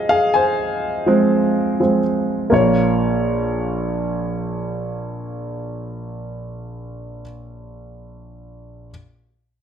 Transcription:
Already playing: F3 G#3 C4 G#4 D#5 F5
0.09 G#4 F5
0.34 C5 G#5
1.06 F3 G#3 C4
1.80 F3 G#3 C4
2.50 A#1 A#3 F4 C#5

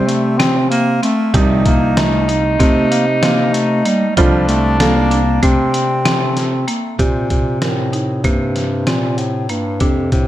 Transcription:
Already playing: A#2 C3 F3 C4 D4
0.07 A3, closed hi-hat
0.39 C4, snare, closed hi-hat
0.70 A#3, closed hi-hat
1.03 A3 C4, closed hi-hat
1.34 C2 A#2 C3 F3 G3 D#4 G4, kick, closed hi-hat
1.66 C2 A#3, kick, closed hi-hat
1.97 A3 A#5, snare, closed hi-hat
2.28 D#4, closed hi-hat
2.59 C3 A3 C4, kick, snare, closed hi-hat
2.91 A#3, closed hi-hat
3.23 A#3 C4, snare, closed hi-hat
3.54 A3, closed hi-hat
3.85 G3 A#3, closed hi-hat
4.11 G3
4.17 C2 D3 F3 G3 C4 D4 F4, kick, closed hi-hat
4.48 C2 A3, closed hi-hat
4.79 A#3 A4, snare, closed hi-hat
5.11 D4, closed hi-hat
5.43 C3 A3 C4, kick, closed hi-hat
5.74 closed hi-hat
6.04 A3 C4, snare, closed hi-hat
6.37 snare, closed hi-hat
6.68 A#3, closed hi-hat
6.98 A#2 C3 G4, kick, closed hi-hat
7.30 C3, kick, closed hi-hat
7.61 A2 A#4, snare, closed hi-hat
7.93 D#4, closed hi-hat
8.23 G2 C3 A#3, kick, closed hi-hat
8.56 snare, closed hi-hat
8.87 A#2 C4, snare, closed hi-hat
9.18 A2, closed hi-hat
9.49 G2 A#3, closed hi-hat
9.80 F2 C3 D4, kick, closed hi-hat
10.12 A2 C3, kick, closed hi-hat

